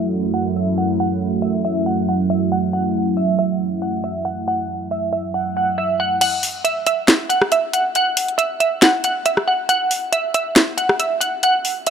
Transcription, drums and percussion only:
6.21 closed hi-hat medium
6.21 crash loud
6.43 open hi-hat medium
6.65 closed hi-hat medium
6.87 closed hi-hat medium
7.08 snare loud
7.08 closed hi-hat medium
7.30 closed hi-hat medium
7.42 cross-stick loud
7.52 closed hi-hat medium
7.73 closed hi-hat medium
7.95 closed hi-hat medium
8.17 closed hi-hat medium
8.17 open hi-hat medium
8.28 closed hi-hat soft
8.39 closed hi-hat medium
8.60 closed hi-hat medium
8.82 snare loud
8.82 closed hi-hat medium
9.04 closed hi-hat medium
9.26 closed hi-hat medium
9.37 cross-stick medium
9.69 closed hi-hat medium
9.91 open hi-hat medium
10.13 closed hi-hat medium
10.34 closed hi-hat medium
10.56 snare loud
10.56 closed hi-hat medium
10.78 closed hi-hat medium
10.89 cross-stick loud
11.00 closed hi-hat medium
11.21 closed hi-hat medium
11.43 closed hi-hat medium
11.65 open hi-hat medium
11.87 closed hi-hat medium

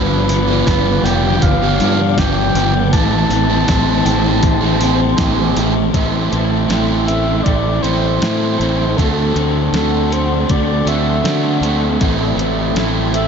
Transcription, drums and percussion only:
0.29 open hi-hat medium
0.67 kick loud
0.67 snare loud
0.67 open hi-hat medium
1.06 open hi-hat medium
1.42 kick loud
1.42 open hi-hat medium
1.80 open hi-hat medium
2.18 kick loud
2.18 snare loud
2.18 open hi-hat medium
2.55 open hi-hat medium
2.93 kick loud
2.93 open hi-hat medium
3.30 open hi-hat medium
3.68 kick loud
3.68 snare loud
3.68 open hi-hat medium
4.06 open hi-hat medium
4.43 kick loud
4.43 open hi-hat medium
4.81 open hi-hat medium
5.18 kick loud
5.18 snare loud
5.18 open hi-hat medium
5.57 open hi-hat medium
5.94 kick loud
5.94 closed hi-hat medium
6.33 closed hi-hat medium
6.70 snare medium
6.70 closed hi-hat medium
7.08 closed hi-hat medium
7.46 kick loud
7.46 closed hi-hat medium
7.84 closed hi-hat medium
8.22 snare loud
8.22 closed hi-hat medium
8.61 closed hi-hat medium
8.98 kick loud
8.98 closed hi-hat medium
9.36 closed hi-hat medium
9.74 snare loud
9.74 closed hi-hat medium
10.12 closed hi-hat medium
10.49 kick loud
10.49 closed hi-hat medium
10.87 closed hi-hat medium
11.25 snare loud
11.25 closed hi-hat medium
11.63 closed hi-hat medium
12.01 kick loud
12.01 closed hi-hat medium
12.39 closed hi-hat medium
12.76 snare medium
12.76 closed hi-hat medium
13.14 closed hi-hat medium

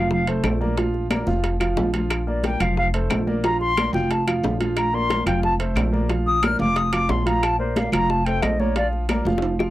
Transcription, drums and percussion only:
0.11 high bongo medium
0.11 high conga soft
0.11 low conga medium
0.27 high conga soft
0.27 high timbale medium
0.44 high bongo medium
0.44 low bongo medium
0.44 high conga medium
0.44 high timbale medium
0.44 low timbale medium
0.44 claves medium
0.61 high conga medium
0.77 high bongo medium
0.77 high conga soft
0.77 high timbale medium
0.94 high bongo soft
0.94 high conga soft
1.11 high bongo medium
1.11 high conga loud
1.11 high timbale loud
1.11 low timbale medium
1.11 claves medium
1.27 high bongo soft
1.27 high conga loud
1.43 high bongo medium
1.43 high conga soft
1.43 high timbale medium
1.60 high conga soft
1.60 high timbale medium
1.60 claves medium
1.77 high bongo medium
1.77 low bongo medium
1.77 high conga medium
1.77 low timbale medium
1.94 high bongo soft
1.94 high conga medium
1.94 high timbale medium
2.10 high bongo medium
2.10 high timbale loud
2.10 claves medium
2.28 high conga soft
2.44 high bongo medium
2.44 high conga loud
2.44 high timbale medium
2.44 low timbale medium
2.60 high conga soft
2.60 low conga medium
2.60 high timbale medium
2.60 claves medium
2.77 high bongo medium
2.77 high conga soft
2.94 high conga soft
2.94 high timbale medium
3.10 high bongo medium
3.10 low bongo medium
3.10 high conga medium
3.10 high timbale medium
3.10 low timbale medium
3.10 claves medium
3.27 high conga medium
3.44 high bongo medium
3.44 high conga soft
3.44 high timbale medium
3.61 high bongo soft
3.61 high conga soft
3.77 high bongo medium
3.77 high conga loud
3.77 high timbale loud
3.77 low timbale medium
3.77 claves medium
3.94 high bongo soft
3.94 high conga medium
4.11 high bongo medium
4.11 high conga soft
4.11 high timbale medium
4.28 high conga soft
4.28 high timbale loud
4.28 claves medium
4.44 high bongo medium
4.44 low bongo medium
4.44 high conga medium
4.44 low timbale medium
4.60 high bongo soft
4.60 high conga medium
4.60 high timbale medium
4.77 high bongo medium
4.77 high conga soft
4.77 high timbale medium
4.77 claves medium
4.94 high conga soft
5.10 high bongo medium
5.10 high conga loud
5.10 high timbale medium
5.10 low timbale medium
5.26 high conga soft
5.26 low conga medium
5.26 high timbale medium
5.26 claves medium
5.43 high bongo medium
5.43 high conga soft
5.60 high conga soft
5.60 high timbale medium
5.76 high bongo medium
5.76 low bongo medium
5.76 high conga medium
5.76 high timbale medium
5.76 low timbale medium
5.76 claves medium
5.94 high conga medium
6.09 high bongo medium
6.09 high conga soft
6.09 high timbale medium
6.27 high bongo soft
6.27 high conga soft
6.43 high bongo medium
6.43 high conga loud
6.43 high timbale loud
6.43 low timbale medium
6.43 claves medium
6.60 high bongo soft
6.60 high conga medium
6.76 high bongo medium
6.76 high conga soft
6.76 high timbale medium
6.93 high conga soft
6.93 high timbale medium
6.93 claves medium
7.09 high bongo medium
7.09 low bongo medium
7.09 high conga medium
7.09 low timbale medium
7.26 high bongo soft
7.26 high conga medium
7.26 high timbale medium
7.43 high bongo medium
7.43 high conga soft
7.43 high timbale medium
7.43 claves medium
7.59 high conga soft
7.76 high bongo medium
7.76 high conga loud
7.76 high timbale medium
7.76 low timbale medium
7.93 high conga soft
7.93 low conga medium
7.93 high timbale loud
7.93 claves medium
8.10 high bongo medium
8.10 high conga soft
8.26 high conga soft
8.26 high timbale medium
8.42 high bongo medium
8.42 low bongo medium
8.42 high conga medium
8.42 high timbale medium
8.42 low timbale medium
8.42 claves medium
8.60 high conga medium
8.76 high bongo medium
8.76 high conga soft
8.76 high timbale medium
8.93 high bongo soft
8.93 high conga soft
9.09 high bongo medium
9.09 high conga loud
9.09 high timbale medium
9.09 low timbale medium
9.09 claves medium
9.26 high bongo medium
9.26 high conga medium
9.38 high bongo loud
9.42 high conga soft
9.42 high timbale medium
9.59 high bongo loud
9.59 high conga soft
9.59 claves medium

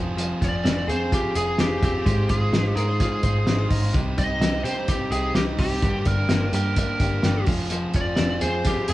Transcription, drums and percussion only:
0.18 closed hi-hat medium
0.42 kick medium
0.42 closed hi-hat medium
0.65 snare loud
0.65 closed hi-hat medium
0.89 closed hi-hat medium
1.12 kick medium
1.12 closed hi-hat medium
1.36 closed hi-hat medium
1.58 snare medium
1.58 closed hi-hat medium
1.83 kick medium
1.83 closed hi-hat medium
2.06 kick loud
2.06 closed hi-hat medium
2.29 kick medium
2.29 closed hi-hat medium
2.53 snare loud
2.53 closed hi-hat medium
2.77 closed hi-hat medium
3.00 kick medium
3.00 snare soft
3.00 closed hi-hat medium
3.23 kick medium
3.23 closed hi-hat medium
3.47 snare medium
3.47 closed hi-hat medium
3.71 kick medium
3.71 open hi-hat medium
3.94 kick loud
3.94 closed hi-hat medium
4.18 kick medium
4.18 closed hi-hat medium
4.41 snare loud
4.41 closed hi-hat medium
4.65 closed hi-hat medium
4.88 kick medium
4.88 closed hi-hat medium
5.12 closed hi-hat medium
5.35 snare loud
5.35 closed hi-hat medium
5.59 kick medium
5.59 open hi-hat medium
5.82 kick loud
5.82 closed hi-hat medium
6.05 kick medium
6.05 closed hi-hat medium
6.29 snare loud
6.29 closed hi-hat medium
6.53 closed hi-hat medium
6.76 kick medium
6.76 closed hi-hat medium
7.00 kick medium
7.00 closed hi-hat medium
7.23 snare medium
7.23 closed hi-hat medium
7.46 kick loud
7.46 open hi-hat medium
7.70 closed hi-hat medium
7.94 kick medium
7.94 closed hi-hat medium
8.16 snare loud
8.16 closed hi-hat medium
8.41 closed hi-hat medium
8.64 kick medium
8.64 snare soft
8.64 closed hi-hat medium
8.88 closed hi-hat medium

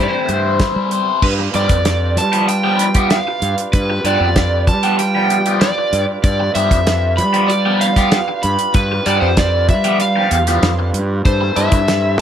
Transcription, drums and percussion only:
0.29 closed hi-hat soft
0.60 kick loud
0.60 snare loud
0.60 closed hi-hat medium
0.91 closed hi-hat medium
1.22 kick loud
1.22 crash loud
1.54 closed hi-hat medium
1.69 kick medium
1.69 closed hi-hat medium
1.85 snare loud
1.85 closed hi-hat medium
2.17 closed hi-hat medium
2.33 closed hi-hat medium
2.49 closed hi-hat medium
2.79 closed hi-hat medium
2.94 kick medium
2.94 closed hi-hat medium
3.10 snare loud
3.10 closed hi-hat medium
3.42 closed hi-hat medium
3.58 closed hi-hat medium
3.73 kick loud
3.73 closed hi-hat medium
4.05 closed hi-hat medium
4.36 kick medium
4.36 snare loud
4.36 closed hi-hat medium
4.67 kick medium
4.67 closed hi-hat medium
4.83 closed hi-hat medium
4.99 closed hi-hat medium
5.30 closed hi-hat medium
5.46 closed hi-hat medium
5.61 snare loud
5.61 closed hi-hat medium
5.93 closed hi-hat medium
6.24 kick loud
6.24 closed hi-hat medium
6.55 closed hi-hat medium
6.71 kick medium
6.71 closed hi-hat medium
6.87 snare loud
6.87 closed hi-hat medium
7.18 closed hi-hat medium
7.34 closed hi-hat medium
7.50 closed hi-hat medium
7.81 closed hi-hat medium
7.96 kick medium
7.96 snare soft
7.96 closed hi-hat medium
8.12 snare loud
8.12 closed hi-hat medium
8.43 closed hi-hat medium
8.59 closed hi-hat medium
8.74 kick loud
8.74 closed hi-hat medium
9.06 closed hi-hat medium
9.37 kick medium
9.37 snare medium
9.37 closed hi-hat medium
9.69 kick medium
9.69 closed hi-hat medium
9.84 closed hi-hat medium
10.00 closed hi-hat medium
10.31 closed hi-hat medium
10.47 snare soft
10.47 closed hi-hat medium
10.63 snare loud
10.63 closed hi-hat medium
10.94 closed hi-hat medium
11.25 kick loud
11.25 closed hi-hat medium
11.56 closed hi-hat medium
11.72 kick medium
11.72 closed hi-hat medium
11.88 snare loud
11.88 closed hi-hat medium

